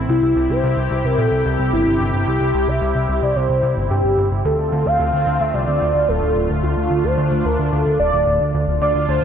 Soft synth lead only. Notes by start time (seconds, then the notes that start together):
0.09 E4
0.50 C5
1.05 A#4
1.18 A4
1.73 E4
2.27 G4
2.68 E5
3.23 D5
3.36 C5
3.91 G4
4.45 A4
4.86 F5
5.40 E5
5.54 D5
6.08 A4
6.63 F4
7.04 C5
7.45 A#4
7.72 A4
8.00 D5
8.82 D5
9.09 C5